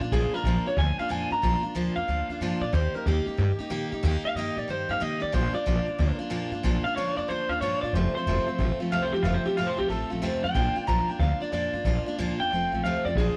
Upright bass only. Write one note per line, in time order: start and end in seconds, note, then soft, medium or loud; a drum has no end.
0.12 0.26 A#1 medium
0.33 muted upright bass stroke medium
0.44 0.58 A#1 medium
0.65 muted upright bass stroke medium
0.77 0.91 D2 loud
0.99 muted upright bass stroke medium
1.11 1.25 F2 medium
1.31 1.39 G2 medium
1.43 1.57 A#1 medium
1.63 muted upright bass stroke medium
1.75 1.89 D2 medium
1.96 2.04 F2 medium
2.08 2.22 D2 loud
2.29 2.37 D#2 medium
2.40 2.55 G2 medium
2.61 2.69 A#2 medium
2.73 2.87 D#2 medium
2.95 muted upright bass stroke medium
3.06 3.20 D#2 medium
3.27 muted upright bass stroke medium
3.38 3.52 G2 loud
3.59 muted upright bass stroke medium
3.70 3.84 A#2 medium
3.92 4.00 C3 medium
4.03 4.17 D#2 loud
4.24 muted upright bass stroke medium
4.35 4.49 G2 medium
4.56 4.64 A#2 medium
4.68 4.82 G2 loud
4.89 4.97 G2 medium
5.01 5.15 C3 medium
5.23 5.30 D#3 medium
5.34 5.48 A#1 loud
5.55 muted upright bass stroke medium
5.66 5.80 A#1 medium
5.87 muted upright bass stroke medium
5.99 6.13 D2 loud
6.19 muted upright bass stroke medium
6.31 6.45 F2 medium
6.51 6.59 G2 loud
6.64 6.78 A#1 medium
6.84 muted upright bass stroke medium
6.96 7.10 D2 medium
7.17 7.25 F2 medium
7.28 7.43 D2 medium
7.48 7.57 D#2 medium
7.61 7.75 G2 medium
7.83 7.90 A#2 medium
7.93 8.07 F1 medium
8.14 muted upright bass stroke medium
8.26 8.40 F1 medium
8.46 muted upright bass stroke medium
8.59 8.73 A1 loud
8.79 muted upright bass stroke medium
8.91 9.06 C2 medium
9.11 9.19 D2 medium
9.23 9.37 F1 loud
9.45 muted upright bass stroke medium
9.57 9.71 A1 medium
9.78 9.86 C2 medium
9.89 10.03 A1 medium
10.11 10.19 A#1 medium
10.22 10.36 D2 medium
10.44 10.51 F2 medium
10.55 10.69 A#1 loud
10.76 muted upright bass stroke medium
10.88 11.02 A#1 medium
11.08 muted upright bass stroke medium
11.19 11.34 D2 loud
11.41 muted upright bass stroke medium
11.52 11.66 F2 medium
11.73 11.81 G2 medium
11.84 11.99 A#1 medium
12.07 muted upright bass stroke medium
12.18 12.32 D2 medium
12.40 12.47 F2 medium
12.50 12.65 F1 loud
12.72 12.80 A#1 medium
12.83 12.97 D2 medium
13.05 13.12 F2 medium
13.15 13.30 A#1 medium